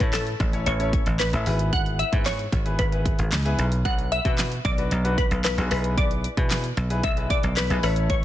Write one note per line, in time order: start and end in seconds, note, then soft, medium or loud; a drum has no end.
0.00 0.34 A2 medium
0.00 0.24 C#4 medium
0.00 0.24 E4 medium
0.00 0.24 A4 medium
0.00 0.25 C#5 medium
0.00 kick medium
0.00 closed hi-hat medium
0.13 0.68 A4 medium
0.13 snare medium
0.13 clap loud
0.13 closed hi-hat loud
0.27 closed hi-hat soft
0.40 0.62 A1 loud
0.40 kick medium
0.40 closed hi-hat medium
0.53 0.65 C#4 medium
0.53 0.65 E4 medium
0.53 0.65 A4 medium
0.53 0.66 C#5 medium
0.53 closed hi-hat medium
0.66 1.00 A1 loud
0.66 1.16 C#5 medium
0.66 closed hi-hat medium
0.80 1.04 C#4 medium
0.80 1.04 E4 medium
0.80 1.04 A4 medium
0.80 1.04 C#5 medium
0.80 closed hi-hat medium
0.93 kick loud
0.93 closed hi-hat medium
1.06 1.29 A1 loud
1.06 closed hi-hat medium
1.20 1.57 B4 loud
1.20 snare medium
1.20 clap loud
1.20 closed hi-hat medium
1.33 1.44 A1 medium
1.33 1.46 C#4 medium
1.33 1.45 E4 medium
1.33 1.46 A4 medium
1.33 1.46 E5 medium
1.33 closed hi-hat medium
1.46 2.02 G#1 loud
1.46 1.99 B3 medium
1.46 1.99 E4 medium
1.46 1.99 G#4 medium
1.46 1.99 B4 medium
1.46 open hi-hat medium
1.59 closed hi-hat soft
1.73 2.00 F#5 loud
1.73 kick loud
1.73 closed hi-hat medium
1.86 closed hi-hat soft
1.99 2.27 E5 loud
1.99 closed hi-hat medium
2.12 2.46 G#2 medium
2.12 2.37 B3 medium
2.12 2.37 E4 medium
2.12 2.37 G#4 medium
2.12 2.37 B4 medium
2.12 kick medium
2.12 closed hi-hat medium
2.26 2.81 C#5 loud
2.26 snare medium
2.26 clap loud
2.26 closed hi-hat loud
2.39 closed hi-hat soft
2.52 2.75 G#1 loud
2.52 kick medium
2.52 closed hi-hat medium
2.65 2.78 B3 medium
2.65 2.78 E4 medium
2.65 2.78 G#4 medium
2.65 2.78 B4 medium
2.65 closed hi-hat medium
2.79 3.12 G#1 loud
2.79 3.55 B4 medium
2.79 kick medium
2.79 closed hi-hat medium
2.92 3.16 B3 medium
2.92 3.16 E4 medium
2.92 3.17 G#4 medium
2.92 3.17 B4 medium
2.92 closed hi-hat medium
3.06 kick loud
3.06 closed hi-hat medium
3.19 3.30 G#1 loud
3.19 closed hi-hat medium
3.32 3.56 C#2 medium
3.32 snare medium
3.32 clap loud
3.32 closed hi-hat medium
3.45 3.63 B3 medium
3.45 3.63 E4 medium
3.45 3.64 G#4 medium
3.45 3.64 B4 loud
3.45 closed hi-hat medium
3.59 3.82 B1 medium
3.59 closed hi-hat medium
3.72 closed hi-hat medium
3.85 4.03 B3 medium
3.85 4.03 D4 medium
3.85 4.03 F#4 medium
3.85 4.03 B4 medium
3.85 4.12 F#5 loud
3.85 kick loud
3.85 closed hi-hat medium
3.99 closed hi-hat soft
4.12 4.66 E5 loud
4.12 closed hi-hat medium
4.25 4.58 B2 medium
4.25 4.49 B3 medium
4.25 4.49 D4 medium
4.25 4.49 F#4 medium
4.25 4.49 B4 medium
4.25 kick medium
4.25 closed hi-hat medium
4.38 snare medium
4.38 clap loud
4.38 closed hi-hat loud
4.52 closed hi-hat soft
4.65 4.87 B1 loud
4.65 5.19 D5 loud
4.65 kick loud
4.65 closed hi-hat medium
4.78 4.90 B3 medium
4.78 4.90 D4 medium
4.78 4.90 F#4 medium
4.78 4.90 B4 medium
4.78 closed hi-hat medium
4.91 5.25 B1 loud
4.91 closed hi-hat medium
5.04 5.29 B3 medium
5.04 5.29 D4 medium
5.04 5.29 F#4 medium
5.04 5.29 B4 medium
5.04 closed hi-hat medium
5.18 5.43 B4 medium
5.18 kick loud
5.18 closed hi-hat medium
5.31 5.53 B1 loud
5.31 closed hi-hat medium
5.45 5.70 B4 medium
5.45 snare medium
5.45 clap loud
5.45 closed hi-hat medium
5.57 5.69 B1 medium
5.57 5.69 B3 medium
5.57 5.71 D4 medium
5.57 5.71 F#4 medium
5.57 5.69 G#4 medium
5.57 closed hi-hat medium
5.71 6.27 B1 loud
5.71 6.24 B3 medium
5.71 6.24 E4 medium
5.71 6.24 G#4 medium
5.71 6.24 B4 medium
5.71 5.98 B4 medium
5.71 open hi-hat medium
5.84 closed hi-hat medium
5.98 6.73 D5 medium
5.98 kick loud
5.98 closed hi-hat medium
6.11 closed hi-hat soft
6.24 closed hi-hat medium
6.37 6.71 B2 medium
6.37 6.61 B3 medium
6.37 6.62 E4 medium
6.37 6.62 G#4 medium
6.37 6.62 B4 medium
6.37 kick medium
6.37 closed hi-hat medium
6.51 snare loud
6.51 clap loud
6.51 closed hi-hat loud
6.64 closed hi-hat medium
6.77 6.99 B1 loud
6.77 closed hi-hat medium
6.90 7.02 B3 medium
6.90 7.03 E4 medium
6.90 7.03 G#4 medium
6.90 7.03 B4 medium
6.90 closed hi-hat medium
7.03 7.37 B1 medium
7.03 7.31 E5 loud
7.03 kick loud
7.03 closed hi-hat medium
7.17 7.41 B3 medium
7.17 7.41 E4 medium
7.17 7.41 G#4 medium
7.17 7.41 B4 medium
7.17 closed hi-hat medium
7.30 7.58 D5 loud
7.30 kick loud
7.30 closed hi-hat medium
7.43 7.66 B1 loud
7.43 closed hi-hat medium
7.57 7.82 B4 medium
7.57 snare medium
7.57 clap loud
7.57 closed hi-hat medium
7.70 7.81 B1 medium
7.70 7.83 B3 medium
7.70 7.82 E4 medium
7.70 7.83 G#4 medium
7.70 7.83 B4 medium
7.70 closed hi-hat medium
7.83 8.25 A1 loud
7.83 8.25 C#4 medium
7.83 8.25 E4 medium
7.83 8.25 A4 medium
7.83 7.95 B4 medium
7.83 8.25 C#5 medium
7.83 open hi-hat medium
7.96 closed hi-hat medium
8.10 8.25 C#5 loud
8.10 kick loud
8.10 closed hi-hat medium